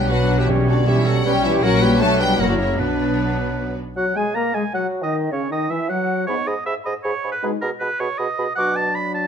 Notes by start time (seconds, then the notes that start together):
Already playing: B1 B2 G3 G5
0.10 F#3 D4 F#4 B4 F#5
0.39 E3 E4 G4 E5
0.49 B2 G3 C#4 C#5
0.68 D3 D4 F#4 D5
0.87 E3 G3 C#4 E4 G4 C#5 E5
1.06 F#3 F#4 A4 F#5
1.25 G3 C#4 G4 B4 C#5 G5
1.44 E3 E4 G4 E5
1.62 A#1 A#2 F#3 C#4 F#4 A#4 C#5 F#5
1.81 G3 G4 B4 G5
2.00 B1 B2 F#3 A3 D4 A4 B4 C#5 A5
2.20 G3 G4 B4 G5
2.38 F#1 F#2 F#3 A#3 E4 F#4 A#4 F#5
2.48 D3 D4 F#4 D5
2.58 C#3 C#4 E4 C#5
2.78 B1 B2 F#3 B3 D4 B4
3.96 F#3 F#4 F#5
4.16 G#3 G#4 G#5
4.35 A#3 A#4 A#5
4.54 G#3 G#4 G#5
4.73 F#3 F#4 F#5
5.02 D#3 D#4 D#5
5.31 C#3 C#4 C#5
5.50 D#3 D#4 D#5
5.69 E3 E4 E5
5.89 F#3 F#4 F#5
6.27 G#2 B3 D#4 G#4 C#5 B5
6.46 G#2 G#4 D#5 B5
6.66 G#2 G#4 E5 B5
6.84 G#2 G#4 D#5 B5
7.03 G#2 G#4 C#5 B5
7.24 G#2 G#4 B5
7.32 B4
7.42 B2 G#3 D#4 G#4 B5
7.61 B2 G#4 A#4 B5
7.80 B2 G#4 B4 B5
8.00 B2 G#4 C#5 B5
8.18 B2 G#4 D#5 B5
8.39 B2 G#4 B5
8.55 B2 F#3 D4 F#4 F#5 D6
8.76 A5
8.95 B5
9.14 A5